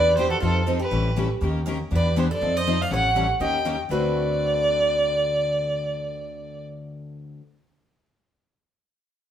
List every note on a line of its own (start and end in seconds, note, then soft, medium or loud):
0.00 0.32 E2 medium
0.00 0.10 E3 medium
0.00 0.10 G3 medium
0.00 0.11 B3 medium
0.00 0.10 D4 medium
0.00 0.11 E4 medium
0.00 0.11 G4 medium
0.00 0.11 B4 medium
0.00 0.15 B4 loud
0.00 0.16 D5 loud
0.17 0.27 E3 medium
0.17 0.27 G3 medium
0.17 0.28 B3 medium
0.17 0.27 D4 medium
0.17 0.27 E4 medium
0.17 0.30 G4 medium
0.17 0.28 G4 loud
0.17 0.28 B4 medium
0.17 0.30 C5 loud
0.30 0.40 F#4 medium
0.30 0.41 A4 medium
0.40 0.81 F2 medium
0.40 0.60 F3 medium
0.40 0.60 C4 medium
0.40 0.60 D#4 medium
0.40 0.64 F4 medium
0.40 0.65 A4 medium
0.40 0.60 A4 medium
0.66 0.77 F3 medium
0.66 0.77 C4 medium
0.66 0.77 D#4 medium
0.66 0.77 A4 loud
0.79 1.26 G4 medium
0.79 1.27 B4 medium
0.91 1.31 A1 medium
0.91 1.09 E3 medium
0.91 1.09 G3 medium
0.91 1.09 C#4 medium
0.91 1.10 E4 medium
0.91 1.10 A4 medium
1.16 1.26 E3 medium
1.16 1.26 G3 medium
1.16 1.27 C#4 medium
1.16 1.27 E4 medium
1.16 1.27 A4 medium
1.41 1.81 D#2 medium
1.41 1.59 D#3 medium
1.41 1.59 A#3 medium
1.41 1.59 C#4 medium
1.41 1.59 G4 medium
1.41 1.59 A#4 medium
1.66 1.76 D#3 medium
1.66 1.76 A#3 medium
1.66 1.76 C#4 loud
1.66 1.76 G4 medium
1.66 1.76 A#4 medium
1.91 2.31 E2 medium
1.91 2.09 E3 medium
1.91 2.09 G3 medium
1.91 2.09 B3 medium
1.91 2.09 D4 medium
1.91 2.09 E4 medium
1.91 2.09 G4 medium
1.91 2.09 B4 medium
1.95 2.16 B4 medium
1.95 2.16 D5 medium
2.16 2.26 E3 medium
2.16 2.26 G3 medium
2.16 2.26 B3 medium
2.16 2.26 D4 medium
2.16 2.26 E4 medium
2.16 2.26 G4 medium
2.16 2.23 G4 medium
2.16 2.26 B4 medium
2.16 2.24 C5 medium
2.31 2.57 A4 medium
2.31 2.58 D5 medium
2.41 2.81 F2 medium
2.41 2.59 F3 medium
2.41 2.59 C4 medium
2.41 2.59 D#4 medium
2.41 2.59 A4 medium
2.56 2.82 C5 medium
2.56 2.83 D#5 medium
2.66 2.76 F3 medium
2.66 2.76 C4 medium
2.66 2.76 D#4 medium
2.66 2.76 A4 medium
2.81 2.92 D5 medium
2.81 2.91 F5 medium
2.90 3.30 A1 medium
2.90 3.08 E3 soft
2.90 3.08 G3 medium
2.90 3.08 C#4 medium
2.90 3.09 E4 medium
2.90 3.09 A4 medium
2.90 3.28 C#5 medium
2.90 3.27 F#5 loud
3.16 3.25 E3 medium
3.16 3.25 G3 medium
3.16 3.25 C#4 medium
3.16 3.26 E4 medium
3.16 3.26 A4 medium
3.40 3.79 D#2 medium
3.40 3.58 D#3 medium
3.40 3.58 A#3 medium
3.40 3.58 C#4 medium
3.40 3.58 G4 medium
3.40 3.58 A#4 medium
3.40 3.76 D#5 medium
3.40 3.76 G5 medium
3.65 3.75 D#3 medium
3.65 3.75 A#3 medium
3.65 3.75 C#4 medium
3.65 3.76 G4 medium
3.65 3.76 A#4 medium
3.89 7.34 D2 medium
3.89 7.39 D3 medium
3.89 7.40 A3 medium
3.89 7.41 C4 medium
3.89 7.42 F#4 medium
3.89 7.43 A4 medium
3.89 7.35 B4 medium
3.89 6.65 D5 medium